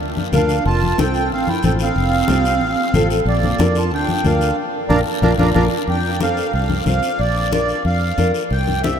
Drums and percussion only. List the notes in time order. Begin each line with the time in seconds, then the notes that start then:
0.00 high conga, long guiro
0.17 high conga
0.33 high conga, low conga, short guiro
0.49 short guiro
0.66 high conga, long guiro
0.83 high conga
0.98 high conga, short guiro
1.14 short guiro
1.30 high conga, long guiro
1.47 high conga
1.63 high conga, short guiro
1.79 short guiro
1.96 high conga, long guiro
2.28 high conga, short guiro
2.45 short guiro
2.61 high conga, long guiro
2.94 high conga, low conga, short guiro
3.10 short guiro
3.26 high conga, long guiro
3.43 high conga
3.58 high conga, short guiro
3.75 short guiro
3.92 high conga, long guiro
4.08 high conga
4.24 high conga, short guiro
4.41 short guiro
4.90 high conga, long guiro
5.23 high conga
5.39 high conga, long guiro
5.55 high conga, long guiro
5.89 high conga
6.20 high conga, short guiro
6.37 short guiro
6.53 high conga, long guiro
6.70 high conga
6.86 high conga, short guiro
7.03 short guiro
7.19 high conga, long guiro
7.52 high conga, short guiro
7.68 short guiro
7.85 high conga, long guiro
8.18 high conga, short guiro
8.34 short guiro
8.50 high conga, long guiro
8.68 high conga
8.84 high conga, short guiro